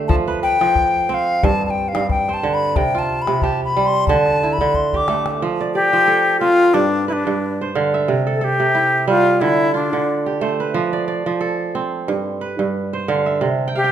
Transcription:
Already playing: D3 A3 G4
0.08 F3 A5, calabash thump, calabash click
0.28 B4
0.43 B4 G5
0.61 F3, calabash click
0.76 calabash thump
1.09 C4 G5
1.14 F5
1.43 G2 A5, calabash thump
1.61 calabash click
1.66 A5
1.70 G5
1.88 F5
1.95 G2, calabash click
2.09 G5, calabash thump
2.29 C5, calabash click
2.34 A5
2.43 D3
2.54 B5
2.76 C3 G5, calabash thump, calabash click
2.95 F4, calabash click
2.99 A5
3.22 B5
3.27 C3, calabash click
3.42 G4 A5, calabash thump
3.64 B5
3.77 G3
3.87 C6
4.07 D3 A5, calabash thump
4.26 calabash click
4.43 E4
4.53 B5
4.58 D3, calabash thump
4.74 C6, calabash thump
4.93 G4 D6, calabash thump
5.08 A3, calabash click
5.26 calabash click
5.42 F3
5.61 D5
5.74 G4 D5
5.93 F3
6.08 A4
6.40 C4 F4
6.74 G2 D4
7.08 E4 B4
7.13 D4
7.27 G2
7.61 C5
7.75 D3 F5
7.94 E5
8.08 C3
8.27 A4
8.34 A4
8.41 G4 A4
8.60 C3
8.75 E4
9.08 G3 F4
9.41 D3 E4
9.74 D4 F4
9.93 D3
10.26 G4
10.41 A3 C5
10.60 B4
10.74 F3
10.93 D5
11.08 D5
11.26 F3
11.41 A4
11.75 C4
12.08 G2
12.41 B4
12.59 G2
12.93 C5
13.08 D3 F5
13.26 E5
13.41 C3
13.68 G5
13.75 G4 F5
13.84 G5

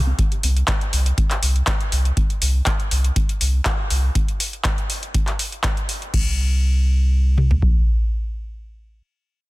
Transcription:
Already playing: C2
0.07 C4
0.19 kick, closed hi-hat
0.32 closed hi-hat
0.43 C2, open hi-hat
0.57 closed hi-hat
0.68 kick, clap, closed hi-hat
0.81 closed hi-hat
0.93 C2, open hi-hat
1.06 closed hi-hat
1.18 kick, closed hi-hat
1.31 clap, closed hi-hat
1.43 C2, open hi-hat
1.56 closed hi-hat
1.67 kick, clap, closed hi-hat
1.81 closed hi-hat
1.92 C2, open hi-hat
2.05 closed hi-hat
2.17 kick, closed hi-hat
2.30 closed hi-hat
2.42 C2, open hi-hat
2.66 kick, clap, closed hi-hat
2.80 closed hi-hat
2.91 C2, open hi-hat
3.04 closed hi-hat
3.16 kick, closed hi-hat
3.29 closed hi-hat
3.41 C2, open hi-hat
3.65 kick, clap, closed hi-hat
3.90 C2, open hi-hat
4.15 kick, closed hi-hat
4.28 closed hi-hat
4.40 open hi-hat
4.53 closed hi-hat
4.65 kick, clap, closed hi-hat
4.78 closed hi-hat
4.90 open hi-hat
5.03 closed hi-hat
5.14 kick, closed hi-hat
5.27 clap, closed hi-hat
5.39 open hi-hat
5.52 closed hi-hat
5.64 kick, clap, closed hi-hat
5.77 closed hi-hat
5.89 open hi-hat
6.02 closed hi-hat
6.14 C2, kick, crash
7.38 mid tom
7.51 floor tom
7.62 kick

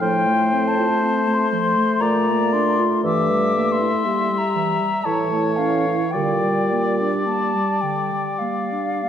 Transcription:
0.00 A2 F3 A3 C5 G5
0.27 A3
0.53 C4
0.68 A5
0.78 F4
1.03 C4
1.28 A3
1.34 C6
1.53 F3
1.77 A3
2.00 A#2 A3 D5 A#5
2.29 A#3
2.53 D4 C6
2.79 F4
3.04 G2 E3 E5 D6
3.31 G3
3.56 A#3
3.72 C6
3.81 E4
4.05 G3 A#3
4.30 G3
4.38 A#5
4.56 E3
4.81 G3
5.04 A2 E3 C#5 A5
5.32 A3
5.57 C#4 F5
5.87 E4
6.11 A#2 G3 D5 G5
6.15 D3
6.43 G3
6.72 A#3
7.01 D4
7.25 A#3 A5
7.56 G3
7.81 D3 G5
8.13 G3
8.39 A#3 F5
8.72 D4
9.03 A#3

